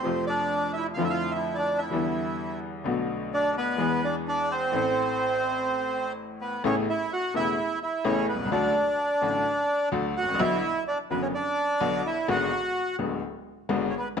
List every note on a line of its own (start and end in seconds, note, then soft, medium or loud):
0.00 0.93 C3 medium
0.00 0.26 C4 medium
0.00 0.25 C5 medium
0.04 0.94 F2 medium
0.04 0.94 F3 medium
0.04 0.95 A3 soft
0.04 0.95 F4 medium
0.27 0.72 D4 medium
0.27 0.71 D5 medium
0.73 0.87 E4 medium
0.73 0.84 E5 medium
0.94 0.98 F2 medium
0.94 1.87 D3 medium
0.94 1.03 F5 loud
0.98 1.88 F2 medium
0.98 1.88 F3 medium
0.98 1.88 A3 soft
0.98 1.89 E4 medium
0.98 1.05 F4 medium
1.05 1.12 E5 medium
1.10 1.33 F4 medium
1.10 1.31 F5 loud
1.31 1.54 E5 medium
1.36 1.57 E4 medium
1.55 1.80 D4 medium
1.55 1.78 D5 medium
1.78 2.58 E5 loud
1.82 2.60 E4 medium
1.90 2.81 E2 medium
1.90 2.80 D3 medium
1.90 2.81 E3 medium
1.90 2.81 G3 medium
1.90 2.82 B3 medium
1.94 2.82 E4 medium
2.84 3.75 B1 medium
2.84 3.75 B2 medium
2.84 3.74 D3 medium
2.84 3.75 A3 soft
2.84 3.76 B3 medium
2.84 3.76 F#4 medium
3.34 3.56 D4 medium
3.34 3.55 D5 loud
3.58 4.01 B3 medium
3.58 4.06 B4 loud
3.76 4.69 E2 medium
3.76 3.78 E3 medium
3.76 4.69 E3 medium
3.76 4.69 G#3 medium
3.76 4.69 B3 medium
3.80 4.70 G#4 medium
4.04 4.15 D4 medium
4.04 4.15 D5 medium
4.28 4.50 D4 medium
4.28 4.52 D5 loud
4.51 6.12 C4 medium
4.51 6.13 C5 loud
4.71 6.54 A1 medium
4.71 6.54 A2 medium
4.71 6.53 E3 medium
4.71 6.53 A3 medium
4.71 6.54 C4 medium
4.71 6.55 A4 medium
6.41 6.62 B3 medium
6.41 6.63 B4 medium
6.64 6.84 A1 medium
6.64 6.84 A2 medium
6.64 6.84 C#3 medium
6.64 6.84 A3 medium
6.64 6.84 B3 medium
6.64 6.75 C#4 medium
6.64 6.84 E4 medium
6.64 6.76 C#5 loud
6.90 7.11 E4 medium
6.90 7.13 E5 loud
7.13 7.34 F#4 medium
7.13 7.34 F#5 loud
7.34 7.54 E1 medium
7.34 7.54 E2 medium
7.34 7.54 C#3 soft
7.34 7.54 A3 soft
7.34 7.54 B3 soft
7.34 7.55 E4 medium
7.34 7.79 E4 medium
7.34 7.79 E5 loud
7.83 8.04 E4 medium
7.83 8.04 E5 medium
8.05 8.25 A1 medium
8.05 8.25 A2 medium
8.05 8.25 C#3 medium
8.05 8.25 A3 medium
8.05 8.25 B3 medium
8.05 8.27 C#4 medium
8.05 8.25 E4 medium
8.05 8.27 C#5 medium
8.29 8.51 B3 medium
8.29 8.51 B4 medium
8.34 8.40 B1 soft
8.39 8.46 C2 medium
8.45 8.52 C#2 medium
8.51 8.72 D2 medium
8.51 8.72 D3 medium
8.51 8.72 F#3 medium
8.51 8.72 A3 medium
8.51 9.89 D4 medium
8.51 8.72 F#4 medium
8.51 9.89 D5 loud
9.21 9.42 A1 medium
9.21 9.42 A2 medium
9.21 9.42 D3 medium
9.21 9.42 F#3 soft
9.21 9.42 A3 soft
9.21 9.42 F#4 medium
9.92 10.12 D2 medium
9.92 10.12 D3 medium
9.92 10.12 F#3 medium
9.92 10.13 A3 medium
9.92 10.13 F#4 medium
10.17 10.39 F#4 medium
10.17 10.41 F#5 loud
10.23 10.29 G#1 soft
10.28 10.34 A1 medium
10.34 10.40 A#1 medium
10.39 10.60 B1 medium
10.39 10.60 B2 medium
10.39 10.60 D3 medium
10.39 10.60 F#3 medium
10.39 10.60 B3 medium
10.39 10.84 E4 medium
10.39 10.60 F#4 medium
10.39 10.83 E5 loud
10.88 10.98 D4 medium
10.88 10.98 D5 loud
11.11 11.31 F#1 medium
11.11 11.30 F#2 medium
11.11 11.30 D3 medium
11.11 11.30 F#3 medium
11.11 11.30 B3 medium
11.11 11.22 B3 medium
11.11 11.30 F#4 medium
11.11 11.22 B4 medium
11.22 11.27 C#4 medium
11.22 11.27 C#5 medium
11.35 12.01 D4 medium
11.35 12.07 D5 loud
11.80 12.01 B1 medium
11.80 12.01 B2 medium
11.80 12.01 D3 medium
11.80 12.01 F#3 medium
11.80 12.01 B3 medium
11.80 12.01 F#4 medium
12.06 12.27 E4 medium
12.06 12.28 E5 medium
12.28 12.48 G#1 medium
12.28 12.48 G#2 medium
12.28 12.48 D3 medium
12.28 12.48 G#3 medium
12.28 12.48 B3 medium
12.28 12.48 F#4 medium
12.28 12.96 F#4 medium
12.28 12.96 F#5 loud
12.98 13.19 D1 medium
12.98 13.19 D2 medium
12.98 13.19 D3 medium
12.98 13.19 G#3 medium
12.98 13.19 B3 soft
12.98 13.19 F#4 medium
13.69 13.90 G#1 medium
13.69 13.89 G#2 medium
13.69 13.89 D3 medium
13.69 13.90 G#3 medium
13.69 13.89 B3 medium
13.69 13.90 F#4 medium
13.90 13.95 C#5 medium
13.97 14.07 B3 medium
13.97 14.08 B4 medium
14.17 14.20 A2 medium
14.17 14.20 A3 medium